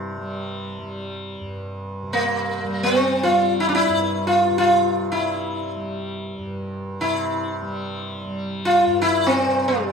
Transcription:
Already playing: tanpura G2 C3 G3, sitar E4
0.17 tanpura G3
0.78 tanpura G3
1.40 tanpura G2
2.02 tanpura C3
2.13 sitar A#3
2.64 tanpura G3
2.83 sitar C4
3.23 tanpura G3, sitar F4
3.60 sitar E4
3.69 sitar D4
3.75 sitar E4
3.89 tanpura G2
4.27 sitar F4
4.51 tanpura C3
4.58 sitar F4
5.12 tanpura G3, sitar E4
5.76 tanpura G3
6.38 tanpura G2
7.00 tanpura C3, sitar E4
7.62 tanpura G3
8.25 tanpura G3
8.65 sitar F4
8.86 tanpura G2
9.02 sitar E4
9.27 sitar C4
9.46 tanpura C3
9.68 sitar G3

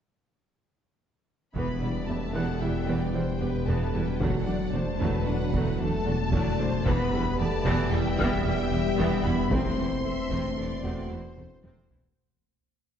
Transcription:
1.54 double bass section E1, detuned saw bass E1, cello section E2, synth pluck E3, viola section E3 B3, trombone section G3 B3, french horn section B3, violin section B4 B5, taiko
1.81 double bass section E1, cello section E2, viola section G3 E4, synth pluck G3, violin section D5
2.06 double bass section E1, cello section E2, french horn section A3, synth pluck B3, viola section B3 G4, violin section E5 A5
2.34 double bass section E1, cello section E2, viola section E3 B3, synth pluck E3, violin section F#5, grand piano F#6
2.61 double bass section E1, cello section E2, viola section G3 E4, french horn section G3, synth pluck E4, violin section E5 G5
2.88 double bass section E1, cello section E2, viola section E3 B3, synth pluck E3, violin section D5
3.13 double bass section E1, cello section E2, french horn section G3, viola section G3 E4, synth pluck G3, violin section C5 G5
3.40 double bass section E1, cello section E2, synth pluck G3, viola section B3 G4, violin section B4
3.67 double bass section E1, cello section E2, viola section E3 B3, synth pluck E3, french horn section A3, violin section A5
3.94 double bass section E1, cello section E2, viola section G3 E4, synth pluck G3
4.07 french horn section G3, violin section G5
4.20 double bass section E1, cello section E2, synth pluck D3, trombone section F#3 D4, viola section F#3 A3, french horn section F#3, violin section A4 F#5, taiko
4.46 double bass section E1, cello section E2, synth pluck F#3, viola section A3 D4, violin section D5
4.73 double bass section E1, cello section E2, synth pluck A3, french horn section A3, viola section D4 F#4, violin section C5 A5
5.00 double bass section E1, cello section E2, synth pluck D3, viola section F#3 A3, violin section B4, taiko
5.26 double bass section E1, cello section E2, french horn section F#3, viola section A3 D4, synth pluck D4, violin section F#5
5.53 double bass section E1, cello section E2, synth pluck D3, viola section F#3 A3, taiko
5.79 double bass section E1, cello section E2, synth pluck F#3, viola section A3 D4, french horn section A3, violin section A4 A5
6.06 double bass section E1, cello section E2, synth pluck F#3, viola section D4 F#4
6.32 double bass section E1, cello section E2, synth pluck D3, viola section F#3 A3, violin section D5, taiko
6.59 double bass section E1, cello section E2, synth pluck F#3, viola section A3 D4, violin section C5
6.85 double bass section E1, detuned saw bass E1, cello section E2, viola section E3 B3, synth pluck E3, trombone section G3 B3, french horn section B3, violin section B4 B5, taiko
7.12 double bass section E1, cello section E2, viola section G3 E4, synth pluck G3
7.39 double bass section E1, cello section E2, french horn section A3, viola section B3 G4, synth pluck B3, violin section D5 A5
7.66 double bass section E1, cello section E2, viola section E3 B3, synth pluck E3, taiko
7.92 double bass section E1, cello section E2, viola section G3 E4, french horn section G3, synth pluck E4, violin section E5 G5
8.18 double bass section E1, cello section E2, synth pluck E3, viola section E3 B3, taiko
8.45 double bass section E1, cello section E2, french horn section G3, viola section G3 E4, synth pluck G3, violin section G5
8.72 double bass section E1, cello section E2, synth pluck G3, viola section B3 G4, grand piano E5
8.98 double bass section E1, cello section E2, synth pluck E3, viola section E3 B3, taiko
9.24 double bass section E1, cello section E2, viola section G3 E4, synth pluck G3, french horn section B3, violin section B5
9.50 double bass section E1, cello section E2, viola section C3 C4, trombone section E3 A3, synth pluck A3, french horn section C4, violin section C5 C6, taiko
9.78 double bass section E1, cello section E2, viola section E3 E4, synth pluck C4
10.04 double bass section E1, cello section E2, viola section A3 A4, synth pluck E4, violin section E5
10.31 double bass section E1, cello section E2, viola section C3 C4, synth pluck A3, taiko
10.57 double bass section E1, cello section E2, viola section E3 E4, synth pluck A4, violin section D5, taiko low-mid
10.84 double bass section E1, cello section E2, viola section C3 C4, synth pluck A3, grand piano F#4 F#5, taiko
11.11 double bass section E1, cello section E2, viola section E3 E4, synth pluck C4, violin section C5
11.37 double bass section E1, cello section E2, viola section A3 A4, synth pluck C4, taiko low-mid
11.63 double bass section E1, cello section E2, viola section C3 C4, synth pluck A3, violin section C5, taiko high
11.90 double bass section E1, cello section E2, viola section E3 E4, synth pluck C4, taiko low

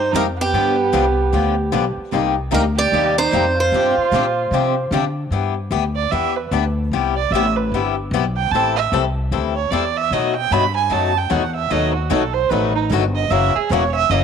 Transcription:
Already playing: upright bass G2, steel-string acoustic guitar C5
0.12 upright bass F2, steel-string acoustic guitar C3 G3, violin D#4
0.16 steel-string acoustic guitar A#3 D#4 G4 A#4
0.36 violin B3
0.41 steel-string acoustic guitar G4
0.53 upright bass G2, steel-string acoustic guitar D3 F3 B3 D4 G4
0.93 upright bass C2, steel-string acoustic guitar D3 F3 B3 D4 G4
1.33 upright bass D2, steel-string acoustic guitar D3 F3 B3 D4 G4
1.72 upright bass B1, steel-string acoustic guitar D3 F3 B3 D4 G4
1.97 muted upright bass stroke
2.12 upright bass C2, steel-string acoustic guitar C3 G3 A#3 D#4 G4
2.51 upright bass D2, steel-string acoustic guitar C3 G3 A#3 D#4 G4 A#4, violin D#4
2.77 violin G4, steel-string acoustic guitar D5
2.92 upright bass D#2, steel-string acoustic guitar C3 G3 A#3 D#4 G4
3.18 violin D#4, steel-string acoustic guitar C5
3.33 upright bass F2, steel-string acoustic guitar C3 G3 A#3 D#4 G4
3.58 violin F4, steel-string acoustic guitar C5
3.72 upright bass G2, steel-string acoustic guitar C3 F3 C4 D4 G4
3.97 muted upright bass stroke
4.12 upright bass A#2, steel-string acoustic guitar C3 F3 C4 D4
4.16 steel-string acoustic guitar G4
4.51 upright bass C3, steel-string acoustic guitar C3 F3 C4 D4 G4
4.91 steel-string acoustic guitar C3 F3 C4 D4 G4, upright bass D3
5.30 upright bass G2, steel-string acoustic guitar E3 B3 D4 G4
5.71 upright bass D2, steel-string acoustic guitar E3 B3 D4 G4
5.96 violin D5
6.11 upright bass E2, steel-string acoustic guitar E3 B3 D4 G4, violin E5
6.36 violin B4
6.51 upright bass D2, steel-string acoustic guitar E3 B3 D4 G4
6.92 upright bass C2, steel-string acoustic guitar C3 G3 B3 E4 G4
7.16 violin D5
7.31 upright bass A1, steel-string acoustic guitar C3, violin E5
7.35 steel-string acoustic guitar G3 B3 E4 G4
7.56 violin B4
7.72 upright bass G1, steel-string acoustic guitar C3 G3 B3 E4 G4
8.11 upright bass B1, steel-string acoustic guitar C3 G3 B3 E4 G4
8.36 violin G5
8.51 upright bass A1, steel-string acoustic guitar E3 G3 C4 E4, violin A5
8.55 steel-string acoustic guitar A4
8.76 violin E5
8.92 upright bass C2, steel-string acoustic guitar E3 G3 C4 E4 A4
9.31 upright bass D2, steel-string acoustic guitar E3 G3 C4 E4 A4
9.56 violin C#5
9.71 upright bass E2, steel-string acoustic guitar E3 G3 C4 E4 A4, violin D5
9.97 violin E5
10.11 upright bass B2, steel-string acoustic guitar B2 F#3 A3 D#4 F#4, violin D#5
10.37 violin G5
10.51 upright bass G2, steel-string acoustic guitar B2 F#3 A3 D#4 F#4, violin B5
10.77 violin G#5
10.90 upright bass F#2, steel-string acoustic guitar B2 F#3 A3 D#4 F#4, violin A5
11.18 violin G5
11.30 upright bass E2, steel-string acoustic guitar B2 F#3 A3 D#4 F#4, violin F#5
11.56 violin E5
11.70 upright bass D#2, steel-string acoustic guitar B2 D#3 F#3 A3 B3 D#4 F#4 A4, violin D#5
11.95 violin F#4
12.10 upright bass B1, steel-string acoustic guitar B2 D#3 F#3 A3 B3 D#4 F#4 A4, violin A4
12.33 violin C5
12.50 upright bass A1, steel-string acoustic guitar B2 D#3 F#3 A3 B3 D#4 F#4 A4, violin B4
12.75 violin D#4
12.90 upright bass G1, steel-string acoustic guitar B2 D#3 F#3 A3 B3 D#4 F#4 A4
13.15 violin D#5
13.30 upright bass F#1, steel-string acoustic guitar C#3 E3 F#3 A#3 C#4 E4 F#4 A#4, violin E5
13.56 violin G#4, muted upright bass stroke
13.69 upright bass E1, steel-string acoustic guitar C#3 E3 F#3 A#3 C#4 E4 F#4 A#4, violin C#5
13.95 violin E5
14.09 upright bass F#1, steel-string acoustic guitar C#3 E3 F#3 A#3 C#4 E4 F#4 A#4, violin D#5

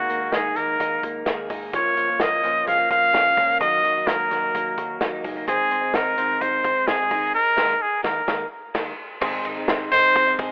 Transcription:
Already playing: clean electric guitar D#3 G#3 A#3 D#4, trumpet F#4
0.10 fingered electric bass D#2, clean electric guitar A#3, closed hi-hat
0.20 clean electric guitar G#3 A#3 D#4
0.32 fingered electric bass D#2, clean electric guitar D#4, trumpet G#4, snare, closed hi-hat
0.55 fingered electric bass D#2, clean electric guitar D#3 G#3 A#3 D#4, trumpet A#4, closed hi-hat
0.80 fingered electric bass D#2, clean electric guitar D#4, kick, closed hi-hat
1.03 fingered electric bass D#2, clean electric guitar A#3, kick, closed hi-hat
1.26 fingered electric bass D#2, clean electric guitar D#3 G#3 A#3 D#4 G#4, snare, closed hi-hat
1.49 fingered electric bass G#1, clean electric guitar D#3 G#3 A#3 D#4, kick, open hi-hat
1.73 fingered electric bass A#1, clean electric guitar A#2 F3 A#3 C#4, trumpet C#5, kick, closed hi-hat
1.97 fingered electric bass A#1, clean electric guitar F3, closed hi-hat
2.08 clean electric guitar F3 A#3 C#4
2.20 fingered electric bass A#1, clean electric guitar A#3, trumpet D#5, snare, closed hi-hat
2.43 fingered electric bass A#1, clean electric guitar A#2 F3 A#3 C#4, closed hi-hat
2.67 fingered electric bass A#1, clean electric guitar G#3, trumpet F5, kick, closed hi-hat
2.78 clean electric guitar A#3
2.90 fingered electric bass A#1, clean electric guitar F3, trumpet F5, kick, closed hi-hat
3.13 fingered electric bass A#1, clean electric guitar A#2 F3 A#3 C#4, snare, closed hi-hat
3.37 fingered electric bass C#2, clean electric guitar A#2 F3 A#3 C#4, kick, open hi-hat
3.61 fingered electric bass D#2, clean electric guitar D#3 F#3 A#3 D#4, trumpet D#5, kick, closed hi-hat
3.84 fingered electric bass D#2, clean electric guitar F#3, closed hi-hat
3.95 clean electric guitar F#3 A#3 D#4
4.07 fingered electric bass D#2, clean electric guitar A#3, trumpet A#4, snare, closed hi-hat
4.30 fingered electric bass D#2, clean electric guitar D#3 F#3 A#3 D#4, snare, closed hi-hat
4.55 fingered electric bass D#2, clean electric guitar A#3, kick, closed hi-hat
4.78 fingered electric bass D#2, clean electric guitar F#3, kick, closed hi-hat
5.00 fingered electric bass D#2, clean electric guitar D#3 F#3 A#3 D#4, snare, closed hi-hat
5.23 fingered electric bass F#1, clean electric guitar D#3 F#3 G#3 A#3 D#4, kick, open hi-hat
5.37 clean electric guitar A#3
5.47 fingered electric bass G#1, clean electric guitar G#2 D#3 G#3 C4 D#4, trumpet G#4, kick, closed hi-hat
5.71 fingered electric bass G#1, clean electric guitar C4, closed hi-hat
5.81 clean electric guitar G#3 C4 D#4
5.94 fingered electric bass G#1, clean electric guitar D#4, trumpet A#4, snare, closed hi-hat
6.17 fingered electric bass G#1, clean electric guitar D#3 G#3 C4 D#4, closed hi-hat
6.41 fingered electric bass G#1, clean electric guitar D#4, trumpet C5, kick, closed hi-hat
6.64 fingered electric bass G#1, clean electric guitar C4, kick, closed hi-hat
6.87 fingered electric bass G#1, clean electric guitar D#3 G#3 C4 D#4 G#4, trumpet G#4, snare, closed hi-hat
7.11 fingered electric bass C#2, clean electric guitar D#3 G#3 C4 D#4, kick, open hi-hat
7.35 trumpet A#4
7.57 fingered electric bass D#2, clean electric guitar G#3 A#3 D#4, kick, snare, crash
7.82 trumpet G#4
8.03 fingered electric bass D#2, clean electric guitar D#3 G#3 A#3 D#4, trumpet A#4, kick, snare
8.27 fingered electric bass D#2, clean electric guitar D#3 G#3 A#3 D#4, kick, snare
8.75 fingered electric bass D#2, clean electric guitar D#3 G#3 A#3 D#4, kick, snare, crash
9.21 fingered electric bass G#1, clean electric guitar G#2 D#3 G#3 C4 D#4 G#4, kick, crash
9.45 fingered electric bass G#1, clean electric guitar D#4, ride
9.56 clean electric guitar G#3 C4 D#4
9.68 fingered electric bass G#1, clean electric guitar C4, snare, ride
9.92 fingered electric bass G#1, clean electric guitar D#4, trumpet C5, snare, ride
10.16 fingered electric bass G#1, clean electric guitar C4, kick, ride
10.27 clean electric guitar G#3 C4 D#4
10.38 fingered electric bass G#1, clean electric guitar D#3 G#3 C4 D#4 G#4, kick, ride

